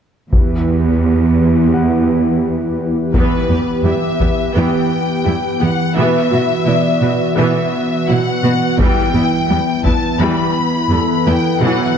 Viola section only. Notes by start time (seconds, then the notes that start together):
3.15 E3 B3
3.50 B3 G4
3.85 G3 E4
4.20 B3 G4
4.55 E3 B3
5.25 G3 E4
5.60 B3 G4
5.95 E3 B3
6.31 B3 F#4
6.66 F#3 E4
7.02 B3 F#4
7.37 E3 B3
8.08 F#3 E4
8.44 B3 F#4
8.79 E3 G3
9.14 B3 E4
9.49 G3 B3
9.85 B3 E4
10.20 E3 G3
10.91 G3 B3
11.27 B3 E4
11.62 E3 F#3